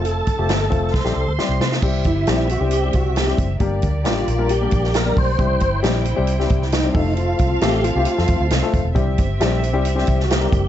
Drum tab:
CC |----------------|x---------------|----------------|----------------|
HH |x-x-x-x---------|--x-x-x-x-x-x-x-|x-x-x-x-x-x-x-o-|x-x-x-x-x-x-x-o-|
SD |----o---oo--o-oo|----o-------oo--|----o------oo---|----o----o-oo---|
BD |--o---o-o-------|o-o-------o---o-|o-o-------o---o-|o-o-------o---o-|

CC |----------------|----------------|
HH |x-x-x-x-x-x-x-x-|x-x-x-x-x-x-x-x-|
SD |----o----o--o---|----o----o-oo---|
BD |--o-------o---o-|o-o-------o---o-|